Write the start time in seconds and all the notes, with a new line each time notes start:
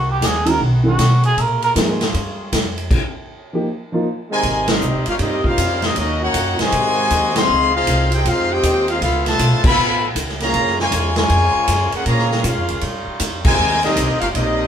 Already playing: C2 D#3 A#3 C4 F#4
0.11 G4
0.21 D#2 G#4, kick, snare, hi-hat pedal, ride
0.46 D#3 G#3 C#4 F#4 A#4, ride
0.60 B1 A3 B3 F#4, kick
0.84 D#3 G#3 C#4 A4
0.88 F#4
0.99 B2, kick, snare, hi-hat pedal, ride
1.23 G#4, ride
1.36 A#2 C#3 A#3 F4 G#4, kick, ride
1.40 A#4
1.62 A#4, ride
1.75 G#2 F3 A#3 D#4 G#4, kick, snare, hi-hat pedal, ride
2.01 snare, ride
2.14 G2, kick, ride
2.52 F2, kick, snare, hi-hat pedal, ride
2.78 ride
2.91 kick, crash
3.53 F3 A#3 D#4 G4
3.92 F3 A#3 D#4 F4
4.30 C3 D#3 G#3 D#4 A#4 C5 G#5
4.43 G#1 C3 G3 A#3 G4, kick, ride
4.68 G3 C4 D#4 G4 A#4 D#5, snare, ride
4.81 C2, hi-hat pedal
4.94 G#1
5.06 G1 C#4 F4 G4 A#4 F5, ride
5.19 G2 G3 C4 D#4 G4 A#4 D#5, kick, ride
5.44 G3 C4 D#4 F4 A#4 C5 F5, muted upright bass stroke, kick
5.57 F2, kick, hi-hat pedal, ride
5.82 G3 C4 D#4 G4 A#4 D#5, snare, ride
5.96 D#2 C#3 F#3 A#3 C#4 D#4 F#4 A#4 D#5, kick, ride
6.21 A#3 C#4 D#4 F#4 A#4 C#5 F#5
6.34 F#2, kick, hi-hat pedal, ride
6.59 C3 D#3 G#3 F#4 C5 D#5 G#5, muted upright bass stroke, snare, ride
6.71 G#2 C3 G#3 F#4, kick, ride
7.11 D#2, kick, hi-hat pedal, ride
7.36 F3 G#3 C4 G#4 D#5 F5 C6, snare, ride
7.48 C#2 D#3 F3 C4 D#4
7.74 G#3 C4 D#4 F4 G#4 C5 F5
7.87 C2, kick, hi-hat pedal, ride
8.12 D#4 G4 G#4 C5 G5, ride
8.25 F2 G#3 C4 D#4 F4 G#4 C5 F5, kick, ride
8.51 G#3 C4 F4 G4 C5 D#5 G5
8.63 D#2, kick, hi-hat pedal, ride
8.88 G#3 C4 D#4 F4 G#4 C5 F5, ride
9.01 C#2 A3 B3 E4 F4 A4 F5, kick, ride
9.26 B2 F3 A3 F4 B4 E5 A5, snare, ride
9.39 B1, kick, hi-hat pedal, ride
9.51 A1
9.64 F1 B2 F3 B3 A4 E5 F5 B5, kick, crash
9.77 A1
10.15 C#2, kick, hi-hat pedal, ride
10.29 snare
10.39 C#3 F3 A#3 G#4 C#5 F5 A#5, snare, ride
10.53 F#2 G#3 A#3 F4 G#4, kick, ride
10.67 snare
10.77 C#3 F3 G#3 F4 A#4 C#5 G#5, snare
10.91 E2, kick, hi-hat pedal, ride
11.15 C#3 F3 G#3 F4 A#4 C#5 G#5, snare, ride
11.30 F2, kick, ride
11.54 muted upright bass stroke
11.68 F#2, kick, hi-hat pedal, ride
11.92 A#3 C#4 F#4 G#4 A#4 F#5, muted upright bass stroke, ride
12.05 A#2 C#3 F3 A#3 F4 G#4 C#5 F5 A#5, kick, ride
12.19 snare
12.31 snare
12.44 G#2 G#3 C#4 F4 G#4 A#4 F5, kick, hi-hat pedal, ride
12.57 F2
12.69 C#2, ride
12.81 G2 D#3 G3 C#4, kick, ride
13.07 muted upright bass stroke
13.20 F2, kick, hi-hat pedal, ride
13.45 C3 D#3 G#3 D#4 A#4 C5 G#5, kick, crash
13.58 D#2 C3 G3 A#3 G4
13.71 snare
13.81 G3 C4 D#4 G4 A#4 D#5, snare, ride
13.96 C2, kick, hi-hat pedal, ride
14.09 G#1
14.20 G1 C#4 F4 G4 A#4 F5, ride
14.34 A#1 G3 C4 D#4 G4 A#4 D#5, kick, ride